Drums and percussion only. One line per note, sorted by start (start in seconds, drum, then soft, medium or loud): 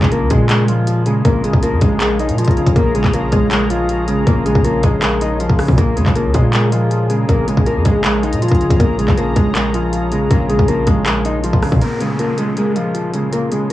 0.02 kick medium
0.02 clap medium
0.12 closed hi-hat medium
0.30 kick loud
0.30 closed hi-hat medium
0.49 clap loud
0.49 closed hi-hat medium
0.68 closed hi-hat medium
0.87 closed hi-hat medium
1.06 closed hi-hat medium
1.25 kick loud
1.25 closed hi-hat medium
1.44 closed hi-hat medium
1.53 kick medium
1.63 closed hi-hat medium
1.81 kick loud
1.81 closed hi-hat medium
2.00 clap loud
2.00 closed hi-hat medium
2.19 closed hi-hat soft
2.29 closed hi-hat medium
2.38 closed hi-hat medium
2.45 kick loud
2.45 closed hi-hat medium
2.51 closed hi-hat soft
2.57 closed hi-hat soft
2.57 open hi-hat medium
2.66 kick medium
2.66 closed hi-hat medium
2.76 kick loud
2.76 closed hi-hat medium
2.95 closed hi-hat medium
3.04 kick medium
3.04 clap medium
3.14 closed hi-hat medium
3.32 kick loud
3.32 closed hi-hat medium
3.51 clap loud
3.51 closed hi-hat medium
3.70 closed hi-hat medium
3.89 closed hi-hat medium
4.08 closed hi-hat medium
4.27 kick loud
4.27 closed hi-hat medium
4.46 closed hi-hat medium
4.55 kick medium
4.65 closed hi-hat medium
4.83 kick loud
4.83 closed hi-hat medium
5.02 clap loud
5.02 closed hi-hat medium
5.21 closed hi-hat medium
5.40 closed hi-hat medium
5.50 kick medium
5.59 cross-stick loud
5.59 open hi-hat medium
5.68 kick medium
5.78 kick loud
5.78 closed hi-hat medium
5.97 closed hi-hat medium
6.06 kick medium
6.06 clap medium
6.15 closed hi-hat medium
6.34 kick loud
6.34 closed hi-hat medium
6.53 clap loud
6.53 closed hi-hat medium
6.72 closed hi-hat medium
6.91 closed hi-hat medium
7.10 closed hi-hat medium
7.29 kick loud
7.29 closed hi-hat medium
7.48 closed hi-hat medium
7.57 kick medium
7.66 closed hi-hat medium
7.85 kick loud
7.85 closed hi-hat medium
8.04 clap loud
8.04 closed hi-hat medium
8.23 closed hi-hat soft
8.33 closed hi-hat medium
8.42 closed hi-hat medium
8.48 kick medium
8.48 closed hi-hat medium
8.55 closed hi-hat soft
8.61 closed hi-hat soft
8.61 open hi-hat medium
8.70 kick medium
8.70 closed hi-hat medium
8.80 kick loud
8.80 closed hi-hat medium
8.99 closed hi-hat medium
9.08 kick medium
9.08 clap medium
9.17 closed hi-hat medium
9.36 kick loud
9.36 closed hi-hat medium
9.55 clap loud
9.55 closed hi-hat medium
9.74 closed hi-hat medium
9.93 closed hi-hat medium
10.12 closed hi-hat medium
10.31 kick loud
10.31 closed hi-hat medium
10.50 closed hi-hat medium
10.59 kick loud
10.68 closed hi-hat medium
10.87 kick loud
10.87 closed hi-hat medium
11.06 clap loud
11.06 closed hi-hat medium
11.25 closed hi-hat medium
11.44 closed hi-hat medium
11.53 kick medium
11.62 cross-stick loud
11.62 open hi-hat medium
11.72 kick medium
11.82 closed hi-hat medium
12.01 closed hi-hat medium
12.19 closed hi-hat medium
12.38 closed hi-hat medium
12.57 closed hi-hat medium
12.76 closed hi-hat medium
12.95 closed hi-hat medium
13.14 closed hi-hat medium
13.33 closed hi-hat medium
13.52 closed hi-hat medium